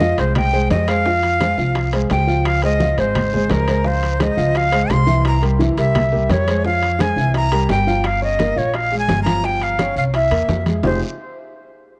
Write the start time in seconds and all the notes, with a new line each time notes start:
Already playing: F2 D#5
0.01 F3 F4 F5, high bongo, high conga, low timbale, short guiro
0.18 C2 G#3 G#4 C5, high bongo, high conga, high timbale, short guiro
0.35 G5, high bongo, high conga, low conga, high timbale, long guiro
0.53 G#3 G#4 C5, high bongo, high conga
0.70 F2 D#5, high bongo, low bongo, high conga, high timbale, low timbale, short guiro
0.88 G#3 G#4 C5 F5, high bongo, high conga, high timbale, short guiro
1.06 F3 F4 F5, high bongo, high conga, long guiro
1.23 high bongo, high conga, high timbale
1.40 G#3 G#4 C5, high bongo, high conga, high timbale, low timbale, short guiro
1.58 C2 F3 F4 F5, high bongo, high conga, short guiro
1.75 high bongo, high conga, high timbale, long guiro
1.93 G#3 G#4 C5, high conga, high timbale
2.10 C#2 G5, high bongo, low bongo, high conga, high timbale, low timbale, short guiro
2.27 F3 F4 F5, high bongo, short guiro
2.45 F5, high bongo, high conga, high timbale, long guiro
2.62 G#3 G#4 C5 D#5, high conga, high timbale
2.80 F3 F4 F5, high bongo, high conga, low timbale, short guiro
2.97 G#1 G#3 G#4 C5, high bongo, high conga, high timbale, short guiro
3.15 high bongo, high conga, low conga, high timbale, long guiro
3.32 G#3 G#4 C5, high bongo, high conga, low conga
3.49 C#2 A#4, high bongo, low bongo, high conga, high timbale, low timbale, short guiro
3.67 G#3 G#4 C5, high bongo, high conga, high timbale, short guiro
3.84 F3 F4 C5 F5, high bongo, high conga, long guiro
4.02 high bongo, high conga, high timbale
4.19 G#3 G#4 C5 D#5, high bongo, high conga, high timbale, low timbale, short guiro
4.37 C#2 F3 F4 F5, high bongo, high conga, short guiro
4.55 F5, high bongo, high conga, high timbale, long guiro
4.72 G#3 G#4 C5, high conga, high timbale
4.90 C2 C6, high bongo, low bongo, high conga, high timbale, low timbale, short guiro
5.07 E3 E4 E5, high bongo, high conga, short guiro
5.25 A#5, high bongo, high conga, high timbale, long guiro
5.42 G3 G4 A#4, high conga, high timbale
5.59 E3 E4 E5, high bongo, high conga, low timbale, short guiro
5.77 C2 G3 G4 A#4 E5, high bongo, high conga, high timbale, short guiro
5.95 high bongo, high conga, low conga, high timbale, long guiro
6.12 G3 G4 A#4, high bongo, high conga, low conga
6.29 F2 C#5, high bongo, low bongo, high conga, high timbale, low timbale, short guiro
6.47 G#3 G#4 C5, high bongo, high conga, high timbale, short guiro
6.65 F3 F4 F5, high bongo, high conga, long guiro
6.82 high bongo, high conga, high timbale
6.99 G#3 G#4 C5 G#5, high bongo, high conga, high timbale, low timbale, short guiro
7.16 C2 E3 E4 E5, high bongo, short guiro
7.34 A#5, high bongo, high conga, high timbale, long guiro
7.52 G3 G4 A#4, high conga, high timbale
7.69 G1 G5, high bongo, low bongo, high conga, high timbale, low timbale, short guiro
7.87 F3 F4 F5, high bongo, short guiro
8.04 F5, high bongo, high conga, high timbale, long guiro
8.22 C#4 C#5 D#5, high bongo, high conga
8.39 A#3 A#4, high bongo, high conga, high timbale, low timbale, short guiro
8.56 A#1 F4 C#5 F5, high bongo, high conga, short guiro
8.74 F5, high bongo, high conga, high timbale, long guiro
8.92 G#3 G#4, high bongo, high conga
8.99 G#5
9.08 G1, high bongo, low bongo, high conga, high timbale, low timbale, short guiro
9.23 F3 F4 A#5, high timbale
9.27 high conga, short guiro
9.44 F3 F4 G5, high bongo, high conga, long guiro
9.61 F5, high bongo, high conga, high timbale
9.79 C#4 C#5, high bongo, high conga, high timbale, low timbale, short guiro
9.96 C2 F5, high conga, short guiro
10.14 E4 E5, high bongo, high conga, high timbale, long guiro
10.31 E2 A#3 A#4, high bongo, high conga, high timbale
10.48 F2, high bongo, low bongo, high conga, low timbale, short guiro
10.66 G#3 G#4, high bongo, high conga, high timbale, short guiro
10.83 F1 F3 C4 D#4 F4 G4 G#4 C5, low bongo, low conga, low timbale, long guiro